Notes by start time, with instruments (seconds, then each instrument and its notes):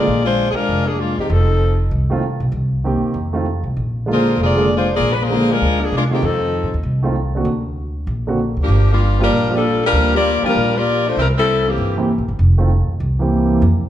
Already playing: saxophone section A#3 F4 G#4 D5
0.07 upright bass A#1
0.24 saxophone section G#3 D4 F4 C5
0.51 saxophone section G#4 A#4
0.55 saxophone section G#3 D4 F4, muted upright bass stroke
0.69 upright bass F1
0.86 saxophone section F3 A#3 D4 G#4
0.98 saxophone section G#3 A#3 D4 F4
1.18 saxophone section D#3 G#3 C4 G4, muted upright bass stroke
1.30 upright bass F1, saxophone section F3 C4 D#4 A4
1.91 upright bass C2
2.10 grand piano D#3 A3 C4 F4
2.40 upright bass B1
2.52 upright bass C2
2.84 grand piano D#3 A#3 C4 G4
3.02 muted upright bass stroke
3.14 upright bass F2
3.33 grand piano D#3 A3 C4 F4
3.63 upright bass C2
3.77 upright bass A#1
4.06 grand piano D3 G#3 A#3 F4
4.12 saxophone section A#3 F4 G#4 C5
4.38 upright bass F1
4.43 saxophone section A#3 F4 G#4 D5
4.56 grand piano D3 G#3 A#3 D4
4.76 saxophone section G#3 D4 F4 C5
4.95 saxophone section A#3 F4 G#4 D5
4.99 upright bass A#1
5.13 saxophone section B4
5.23 saxophone section A#3 F4 G#4 C5
5.30 grand piano D3 G#3 A#3 F4
5.50 saxophone section G#3 D4 F4 A#4
5.61 upright bass D2
5.80 saxophone section F3 A#3 D4 G#4
5.92 upright bass C3, saxophone section G#3 A#3
5.96 saxophone section D4 F4
6.11 grand piano D#3 A3 C4 F4, saxophone section D#3 G#3 C4 G4
6.22 upright bass F2, saxophone section F3 C4 D#4 A4
6.63 upright bass A2
6.74 upright bass D#2
6.83 upright bass C2
7.03 grand piano D#3 A3 C4 F4
7.35 grand piano D3 A#3 C4 F#4
7.45 upright bass D2
8.07 upright bass A#1
8.27 grand piano D3 A#3 C4 F#4
8.57 upright bass D2
8.62 saxophone section F3 A#3 D4 G4
8.68 upright bass G1
8.91 saxophone section G3 A#3 D4 F4
9.18 grand piano F3 A#3 D4 G4, saxophone section G3 F4
9.22 saxophone section D4 A#4
9.31 upright bass A#1
9.50 grand piano F3 A#3 D4 G4
9.55 saxophone section G3 D4 F4 A4
9.85 saxophone section G3 D4 F4 A#4
9.92 upright bass D2, grand piano F3 A#3 D4 G4
10.15 saxophone section A#3 F4 G4 D5
10.43 grand piano F3 A#3 D4 G4, saxophone section G3 D4 F4, muted upright bass stroke
10.47 saxophone section A#4
10.55 upright bass A#1
10.76 saxophone section A#3 F4 G4 D5
11.07 saxophone section A3 D4 F4 C5
11.16 upright bass C2, saxophone section G3 C4 E4 A#4
11.38 saxophone section G3 C4 E4 A4
11.67 saxophone section E3 A#3 C4 G4
11.78 upright bass G1
11.97 grand piano E3 A#3 C4 G4
12.18 upright bass A#1
12.28 upright bass G1
12.39 upright bass F1
12.58 grand piano D#3 A3 C4 F4
12.88 muted upright bass stroke
13.00 upright bass C2
13.19 grand piano E3 A#3 C4 G4
13.62 upright bass F2